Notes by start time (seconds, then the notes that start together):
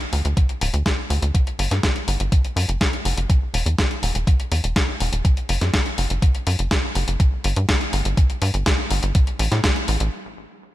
0.01 closed hi-hat
0.13 D2, open hi-hat
0.25 D2, closed hi-hat
0.37 kick, closed hi-hat
0.49 closed hi-hat
0.61 D1, open hi-hat
0.74 D2, closed hi-hat
0.86 kick, snare, closed hi-hat
1.10 D2, open hi-hat
1.22 D2, closed hi-hat
1.35 kick, closed hi-hat
1.47 closed hi-hat
1.59 G1, open hi-hat
1.71 G2, snare, closed hi-hat
1.83 kick, snare, closed hi-hat
1.96 closed hi-hat
2.08 G1, open hi-hat
2.20 G1, closed hi-hat
2.32 kick, closed hi-hat
2.45 closed hi-hat
2.56 F#2, open hi-hat
2.69 F#1, closed hi-hat
2.81 kick, snare, closed hi-hat
2.93 closed hi-hat
3.05 F#1, open hi-hat
3.17 F#1, closed hi-hat
3.30 kick, closed hi-hat
3.54 E1, open hi-hat
3.66 E2, closed hi-hat
3.78 kick, snare, closed hi-hat
3.91 closed hi-hat
4.03 E1, open hi-hat
4.15 E1, closed hi-hat
4.27 kick, closed hi-hat
4.40 closed hi-hat
4.52 E2, open hi-hat
4.64 E1, closed hi-hat
4.76 kick, snare, closed hi-hat
5.00 E1, open hi-hat
5.12 E1, closed hi-hat
5.25 kick, closed hi-hat
5.37 closed hi-hat
5.49 F#1, open hi-hat
5.61 F#2, snare, closed hi-hat
5.74 kick, snare, closed hi-hat
5.86 closed hi-hat
5.98 F#1, open hi-hat
6.10 F#1, closed hi-hat
6.22 kick, closed hi-hat
6.35 closed hi-hat
6.47 F#2, open hi-hat
6.59 F#1, closed hi-hat
6.71 kick, snare, closed hi-hat
6.95 F#1, open hi-hat
7.08 F#1, closed hi-hat
7.20 kick, closed hi-hat
7.44 G1, open hi-hat
7.56 G2, closed hi-hat
7.69 kick, snare, closed hi-hat
7.81 closed hi-hat
7.93 G1, open hi-hat
8.05 G1, closed hi-hat
8.17 kick, closed hi-hat
8.30 closed hi-hat
8.42 G2, open hi-hat
8.54 G1, closed hi-hat
8.66 kick, snare, closed hi-hat
8.91 G1, open hi-hat
9.03 G1, closed hi-hat
9.15 kick, closed hi-hat
9.27 closed hi-hat
9.39 A1, open hi-hat
9.52 A2, snare, closed hi-hat
9.64 kick, snare, closed hi-hat
9.76 closed hi-hat
9.88 A1, open hi-hat
10.00 A1, closed hi-hat